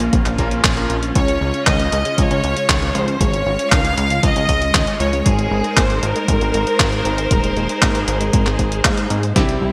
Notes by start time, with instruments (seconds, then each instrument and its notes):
Already playing: string section A#3 C#4 F4
0.00 closed hi-hat
0.13 analog synth bass A#1, kick, closed hi-hat
0.26 analog synth bass A#1, clap, closed hi-hat
0.38 analog synth bass A#1, electric grand piano A#3 C#4 F4 A#4, kick, closed hi-hat
0.51 closed hi-hat
0.64 analog synth bass A#1, kick, clap, closed hi-hat
0.77 electric grand piano A#3 C#4 F4 A#4, closed hi-hat
0.90 analog synth bass A#1, closed hi-hat
1.03 closed hi-hat
1.15 analog synth bass C#2, synth arpeggio sound C#3, string section G#3, violin section C#5, kick, closed hi-hat
1.28 synth arpeggio sound C#3, closed hi-hat
1.41 analog synth bass C#2, synth arpeggio sound C#3
1.54 synth arpeggio sound C#3, closed hi-hat
1.67 analog synth bass C#2, synth arpeggio sound D#3, violin section D#5, kick, clap, closed hi-hat
1.80 synth arpeggio sound C#4, closed hi-hat
1.92 analog synth bass C#2, synth arpeggio sound G#3, closed hi-hat
2.05 synth arpeggio sound C#3, closed hi-hat
2.18 analog synth bass C#2, synth arpeggio sound C#3, violin section C#5, kick, closed hi-hat
2.31 analog synth bass C#2, synth arpeggio sound C#3, closed hi-hat
2.44 analog synth bass C#2, synth arpeggio sound C#3, closed hi-hat
2.57 synth arpeggio sound C#3, closed hi-hat
2.69 analog synth bass C#2, synth arpeggio sound D#3, kick, clap, closed hi-hat
2.82 synth arpeggio sound C#4, closed hi-hat
2.95 analog synth bass C#2, synth arpeggio sound F3, violin section C5, closed hi-hat
3.08 synth arpeggio sound C#3, closed hi-hat
3.20 analog synth bass G#1, synth arpeggio sound C#3, violin section C#5, kick, closed hi-hat
3.33 synth arpeggio sound C#3, closed hi-hat
3.46 analog synth bass G#1, synth arpeggio sound C#3
3.59 synth arpeggio sound C#3, closed hi-hat
3.72 analog synth bass C#2, synth arpeggio sound D#3, violin section F5, kick, clap, closed hi-hat
3.85 synth arpeggio sound C#4, closed hi-hat
3.98 analog synth bass C#2, synth arpeggio sound G#3, closed hi-hat
4.10 synth arpeggio sound C#3, closed hi-hat
4.23 analog synth bass C#2, synth arpeggio sound C#3, violin section D#5, kick, closed hi-hat
4.36 analog synth bass C#2, synth arpeggio sound C#3, closed hi-hat
4.49 analog synth bass C#2, synth arpeggio sound C#3, kick, closed hi-hat
4.62 synth arpeggio sound C#3, closed hi-hat
4.74 analog synth bass C#2, synth arpeggio sound D#3, kick, clap, closed hi-hat
4.87 synth arpeggio sound C#4, closed hi-hat
5.00 analog synth bass C#2, synth arpeggio sound F3, violin section C#5, closed hi-hat
5.13 synth arpeggio sound C#3, closed hi-hat
5.26 analog synth bass G#1, synth arpeggio sound G#3, string section D#4 A#4 C5, violin section G#4, kick, closed hi-hat
5.39 synth arpeggio sound G#3, closed hi-hat
5.51 analog synth bass G#1, synth arpeggio sound G#3
5.64 synth arpeggio sound G#3, closed hi-hat
5.77 analog synth bass G#1, synth arpeggio sound A#3, violin section C5, kick, clap, closed hi-hat
5.90 synth arpeggio sound G#4, closed hi-hat
6.03 analog synth bass G#1, synth arpeggio sound D#4, violin section A#4, closed hi-hat
6.16 synth arpeggio sound G#3, closed hi-hat
6.28 analog synth bass G#1, synth arpeggio sound G#3, kick, closed hi-hat
6.41 analog synth bass G#1, synth arpeggio sound G#3, closed hi-hat
6.54 analog synth bass G#1, synth arpeggio sound G#3, closed hi-hat
6.67 synth arpeggio sound G#3, closed hi-hat
6.80 analog synth bass G#1, synth arpeggio sound A#3, kick, clap, closed hi-hat
6.92 synth arpeggio sound G#4, closed hi-hat
7.05 analog synth bass G#1, synth arpeggio sound C4, closed hi-hat
7.18 synth arpeggio sound G#3, closed hi-hat
7.31 analog synth bass D#1, synth arpeggio sound G#3, string section G#4, kick, closed hi-hat
7.44 synth arpeggio sound G#3, closed hi-hat
7.57 analog synth bass D#1, synth arpeggio sound G#3, closed hi-hat
7.69 synth arpeggio sound G#3, closed hi-hat
7.82 analog synth bass G#1, synth arpeggio sound A#3, kick, clap, closed hi-hat
7.95 synth arpeggio sound G#4, closed hi-hat
8.08 analog synth bass G#1, synth arpeggio sound D#4, closed hi-hat
8.21 synth arpeggio sound G#3, closed hi-hat
8.33 analog synth bass G#1, synth arpeggio sound G#3, kick, closed hi-hat
8.46 analog synth bass G#1, synth arpeggio sound G#3, clap, closed hi-hat
8.59 analog synth bass G#1, synth arpeggio sound G#3, kick, closed hi-hat
8.72 synth arpeggio sound G#3, closed hi-hat
8.85 analog synth bass G#2, synth arpeggio sound A#3, kick, clap, closed hi-hat
8.97 synth arpeggio sound G#4, closed hi-hat
9.10 analog synth bass G#2, synth arpeggio sound C4, closed hi-hat
9.23 synth arpeggio sound G#3, closed hi-hat
9.36 analog synth bass C2, synth arpeggio sound C3, electric grand piano G3 C4 E4 G4, string section G3 C4 E4, kick, snare, closed hi-hat
9.49 synth arpeggio sound C3, closed hi-hat
9.62 analog synth bass C2, synth arpeggio sound C3